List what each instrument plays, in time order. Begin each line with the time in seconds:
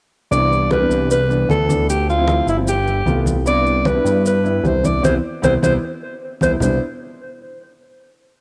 0.31 analog synth bass C2, grand piano E3 B3 D4, alto saxophone D5, high conga, maracas
0.51 high conga, maracas
0.71 alto saxophone B4, high conga, maracas
0.80 grand piano E3 B3 D4
0.89 analog synth bass C2, high conga, maracas
1.11 alto saxophone B4, high conga, maracas
1.29 grand piano E3 B3 D4, high conga, maracas
1.49 analog synth bass D2, alto saxophone A4, high conga, maracas
1.68 grand piano E3 B3 D4, high conga, maracas
1.89 alto saxophone G4, high conga, maracas
2.09 alto saxophone F4, high conga, maracas
2.18 grand piano F3 C4 E4
2.28 high conga, maracas
2.47 analog synth bass G1, alto saxophone E4, high conga, maracas
2.57 grand piano F3 C4 E4
2.67 alto saxophone G4, high conga, maracas
2.87 high conga, maracas
3.06 analog synth bass C2, grand piano A3 B3 F4, high conga, maracas
3.26 high conga, maracas
3.46 grand piano B3 D4 E4, alto saxophone D5, high conga, maracas
3.66 high conga, maracas
3.85 alto saxophone B4, high conga, maracas
3.95 grand piano B3 D4 E4
4.04 analog synth bass G2, high conga, maracas
4.26 alto saxophone B4, high conga, maracas
4.44 grand piano B3 D4 E4, high conga, maracas
4.63 analog synth bass C2, alto saxophone C5, high conga, maracas
4.84 grand piano B3 D4 E4, alto saxophone D5, high conga, maracas
5.03 analog synth bass C2, grand piano B3 C4 E4, alto saxophone C5, high conga, maracas
5.42 analog synth bass C2, grand piano B3 C4 E4, alto saxophone C5, high conga, maracas
5.62 analog synth bass C2, grand piano B3 C4 E4, alto saxophone C5, high conga, maracas
6.41 analog synth bass C2, grand piano B3 C4 E4, alto saxophone C5, high conga, maracas
6.60 analog synth bass C2, grand piano B3 D4 E4, alto saxophone C5, low conga, maracas